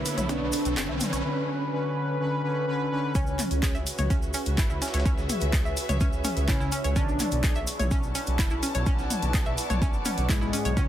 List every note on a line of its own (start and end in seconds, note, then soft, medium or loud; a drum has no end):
0.00 0.27 D3 medium
0.00 1.25 E4 medium
0.00 0.87 F#4 medium
0.00 1.23 F#4 medium
0.00 1.25 A4 medium
0.00 0.27 B4 medium
0.00 0.59 B4 medium
0.00 0.27 C#5 medium
0.00 0.87 E5 medium
0.00 1.23 B5 medium
0.00 riser medium
0.05 closed hi-hat medium
0.05 open hi-hat loud
0.05 cabasa loud
0.17 0.27 B1 medium
0.17 0.27 C#5 medium
0.17 closed hi-hat medium
0.17 mid tom medium
0.17 cabasa medium
0.29 0.39 B1 loud
0.29 1.23 D3 medium
0.29 0.33 C#4 medium
0.29 0.91 D4 loud
0.29 1.23 B4 loud
0.29 1.23 C#5 medium
0.29 kick loud
0.29 closed hi-hat medium
0.29 cabasa soft
0.41 0.51 B1 medium
0.52 closed hi-hat medium
0.52 open hi-hat loud
0.52 cabasa loud
0.65 0.75 B1 medium
0.65 closed hi-hat medium
0.65 cabasa medium
0.77 0.87 F#1 loud
0.77 0.84 G#4 medium
0.77 kick loud
0.77 snare loud
0.77 clap loud
0.77 closed hi-hat medium
0.77 cabasa soft
0.89 0.99 B1 medium
0.89 0.93 E5 medium
1.00 closed hi-hat medium
1.00 open hi-hat loud
1.00 mid tom medium
1.00 cabasa loud
1.13 1.23 B1 medium
1.13 1.23 C#5 medium
1.13 closed hi-hat medium
1.13 cabasa medium
1.24 1.70 D3 medium
1.24 1.70 C#4 medium
1.24 1.70 B4 loud
1.72 2.18 D3 loud
1.72 2.18 C#4 medium
1.72 2.18 B4 loud
2.20 2.42 D3 medium
2.20 2.42 C#4 medium
2.20 2.42 B4 loud
2.44 2.66 D3 medium
2.44 2.66 C#4 medium
2.44 2.66 B4 loud
2.67 2.89 D3 loud
2.67 2.89 C#4 medium
2.67 2.89 B4 loud
2.91 3.13 D3 loud
2.91 3.13 C#4 medium
2.91 3.13 B4 loud
3.15 3.25 C#2 loud
3.15 3.77 C#3 loud
3.15 3.77 C#4 loud
3.15 3.19 C#4 loud
3.15 7.53 F#4 medium
3.15 6.92 G#4 medium
3.15 6.92 C#5 medium
3.15 6.92 E5 medium
3.15 10.88 C#6 medium
3.15 kick loud
3.15 closed hi-hat medium
3.15 cabasa medium
3.27 3.37 C#2 medium
3.27 cabasa soft
3.39 clap soft
3.39 closed hi-hat medium
3.39 open hi-hat loud
3.39 mid tom medium
3.39 cabasa loud
3.51 3.61 C#2 medium
3.51 closed hi-hat medium
3.51 cabasa soft
3.63 3.73 C#2 loud
3.63 3.69 G#4 medium
3.63 7.80 B4 medium
3.63 kick loud
3.63 snare loud
3.63 clap loud
3.63 closed hi-hat medium
3.63 cabasa medium
3.75 3.85 C#2 medium
3.75 3.79 E5 medium
3.75 closed hi-hat soft
3.75 cabasa soft
3.87 closed hi-hat medium
3.87 open hi-hat medium
3.87 cabasa medium
3.98 4.08 C#2 medium
3.98 4.08 C#5 medium
3.98 closed hi-hat medium
3.98 mid tom medium
3.98 cabasa soft
4.05 7.60 E5 medium
4.10 4.20 C#2 loud
4.10 4.14 C#4 medium
4.10 kick loud
4.10 closed hi-hat medium
4.10 cabasa medium
4.22 4.32 C#2 medium
4.22 cabasa soft
4.34 4.38 C#4 medium
4.34 closed hi-hat medium
4.34 open hi-hat loud
4.34 cabasa medium
4.45 4.56 C#2 medium
4.45 closed hi-hat medium
4.45 cabasa soft
4.58 4.68 G#1 loud
4.58 4.62 E4 medium
4.58 kick loud
4.58 snare loud
4.58 clap loud
4.58 closed hi-hat medium
4.58 cabasa medium
4.70 4.80 C#2 medium
4.70 4.80 E4 medium
4.70 cabasa soft
4.82 4.86 C#4 medium
4.82 snare medium
4.82 closed hi-hat medium
4.82 open hi-hat loud
4.82 cabasa medium
4.88 snare medium
4.88 closed hi-hat medium
4.94 5.04 C#2 medium
4.94 5.04 C#5 medium
4.94 snare medium
4.94 closed hi-hat medium
4.94 cabasa soft
5.00 snare medium
5.00 closed hi-hat medium
5.05 5.16 C#2 loud
5.05 5.10 C#4 loud
5.05 kick loud
5.05 closed hi-hat medium
5.05 cabasa medium
5.18 5.28 C#2 medium
5.18 snare medium
5.18 cabasa soft
5.29 closed hi-hat medium
5.29 open hi-hat loud
5.29 mid tom medium
5.29 cabasa medium
5.41 5.51 C#2 medium
5.41 closed hi-hat medium
5.41 cabasa soft
5.53 5.63 C#2 loud
5.53 5.60 G#4 medium
5.53 kick loud
5.53 snare loud
5.53 clap loud
5.53 closed hi-hat medium
5.53 cabasa soft
5.65 5.75 C#2 medium
5.65 5.69 E5 medium
5.65 cabasa soft
5.77 closed hi-hat medium
5.77 open hi-hat loud
5.77 cabasa loud
5.89 5.99 C#2 medium
5.89 5.99 C#5 medium
5.89 closed hi-hat medium
5.89 mid tom medium
5.89 cabasa soft
6.01 6.11 C#2 loud
6.01 6.05 C#4 medium
6.01 kick loud
6.01 closed hi-hat medium
6.01 cabasa medium
6.13 6.23 C#2 medium
6.13 cabasa soft
6.24 6.29 C#4 medium
6.24 closed hi-hat medium
6.24 open hi-hat loud
6.24 mid tom medium
6.24 cabasa medium
6.37 6.47 C#2 medium
6.37 closed hi-hat medium
6.37 cabasa soft
6.48 6.59 G#1 loud
6.48 6.92 C#3 medium
6.48 6.92 C#4 loud
6.48 6.52 E4 medium
6.48 kick loud
6.48 snare loud
6.48 clap loud
6.48 closed hi-hat medium
6.48 cabasa medium
6.60 6.70 C#2 medium
6.60 6.70 E4 medium
6.60 snare soft
6.60 cabasa soft
6.72 6.76 C#4 medium
6.72 closed hi-hat medium
6.72 open hi-hat loud
6.72 cabasa medium
6.84 6.94 C#2 medium
6.84 6.94 C#5 medium
6.84 closed hi-hat medium
6.84 cabasa soft
6.96 7.06 B1 loud
6.96 7.58 D3 loud
6.96 7.00 C#4 loud
6.96 7.58 D4 loud
6.96 10.88 E4 medium
6.96 10.73 B4 medium
6.96 10.73 D5 medium
6.96 10.73 F#5 medium
6.96 kick loud
6.96 closed hi-hat medium
6.96 cabasa medium
7.08 7.18 B1 medium
7.08 cabasa soft
7.20 clap soft
7.20 closed hi-hat medium
7.20 open hi-hat loud
7.20 mid tom medium
7.20 cabasa loud
7.31 7.42 B1 medium
7.31 closed hi-hat medium
7.31 cabasa soft
7.43 7.54 B1 loud
7.43 7.50 G#4 medium
7.43 kick loud
7.43 snare loud
7.43 clap loud
7.43 closed hi-hat medium
7.43 cabasa medium
7.55 7.66 B1 medium
7.55 7.60 E5 medium
7.55 closed hi-hat soft
7.55 cabasa soft
7.67 closed hi-hat medium
7.67 open hi-hat loud
7.67 cabasa loud
7.79 7.89 B1 medium
7.79 7.89 C#5 medium
7.79 closed hi-hat medium
7.79 mid tom medium
7.79 cabasa soft
7.87 10.77 A5 medium
7.87 cabasa medium
7.91 8.01 B1 loud
7.91 7.95 C#4 loud
7.91 kick loud
7.91 closed hi-hat medium
8.03 8.13 B1 medium
8.03 cabasa soft
8.15 8.19 C#4 medium
8.15 closed hi-hat medium
8.15 open hi-hat loud
8.15 cabasa medium
8.26 8.37 B1 medium
8.26 closed hi-hat medium
8.26 cabasa soft
8.39 8.49 F#1 loud
8.39 8.43 E4 medium
8.39 kick loud
8.39 snare loud
8.39 clap loud
8.39 closed hi-hat medium
8.39 cabasa medium
8.50 8.61 B1 medium
8.50 8.61 E4 medium
8.50 cabasa soft
8.63 8.67 C#4 medium
8.63 closed hi-hat medium
8.63 open hi-hat loud
8.63 cabasa loud
8.68 10.77 D5 medium
8.74 8.85 B1 medium
8.74 8.85 C#5 medium
8.74 closed hi-hat medium
8.74 cabasa soft
8.86 8.97 B1 loud
8.86 8.90 C#4 loud
8.86 kick loud
8.86 closed hi-hat medium
8.86 cabasa medium
8.99 9.08 B1 medium
8.99 snare medium
8.99 cabasa soft
9.10 closed hi-hat medium
9.10 open hi-hat loud
9.10 mid tom loud
9.10 cabasa loud
9.22 9.32 B1 medium
9.22 closed hi-hat medium
9.22 cabasa soft
9.34 9.44 B1 loud
9.34 9.41 G#4 medium
9.34 kick loud
9.34 snare loud
9.34 clap loud
9.34 closed hi-hat medium
9.34 cabasa soft
9.46 9.56 B1 medium
9.46 9.50 E5 medium
9.46 cabasa soft
9.58 closed hi-hat medium
9.58 open hi-hat medium
9.58 cabasa loud
9.70 9.80 B1 medium
9.70 9.80 C#5 medium
9.70 closed hi-hat medium
9.70 mid tom medium
9.70 cabasa soft
9.82 9.95 B1 medium
9.82 9.86 C#4 loud
9.82 kick loud
9.82 closed hi-hat medium
9.82 cabasa medium
9.93 10.04 F#1 medium
9.93 cabasa soft
10.05 10.10 C#4 medium
10.05 closed hi-hat medium
10.05 open hi-hat loud
10.05 mid tom medium
10.05 cabasa loud
10.18 10.28 B1 medium
10.18 closed hi-hat medium
10.18 cabasa soft
10.29 10.39 B1 loud
10.29 10.73 G#2 medium
10.29 10.73 G#3 medium
10.29 10.33 E4 medium
10.29 kick loud
10.29 snare loud
10.29 clap loud
10.29 closed hi-hat medium
10.29 cabasa medium
10.41 10.51 B1 medium
10.41 10.51 E4 medium
10.41 snare soft
10.41 cabasa soft
10.53 10.57 C#4 medium
10.53 closed hi-hat medium
10.53 open hi-hat loud
10.53 cabasa medium
10.65 10.75 B1 medium
10.65 10.75 C#5 medium
10.65 closed hi-hat medium
10.65 cabasa soft
10.77 10.87 C#2 loud
10.77 10.88 C#3 loud
10.77 10.81 C#4 loud
10.77 10.88 C#4 loud
10.77 10.88 F#4 medium
10.77 10.88 G#4 medium
10.77 10.88 C#5 medium
10.77 10.88 E5 medium
10.77 kick loud
10.77 closed hi-hat medium
10.77 cabasa medium